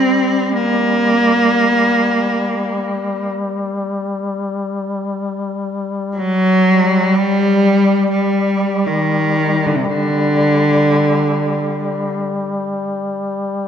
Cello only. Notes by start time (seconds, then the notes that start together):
Already playing: C4
0.53 A#3
6.16 F#3
7.15 G3
8.11 G3
8.87 D#3
9.66 D3
9.76 C3
9.85 D3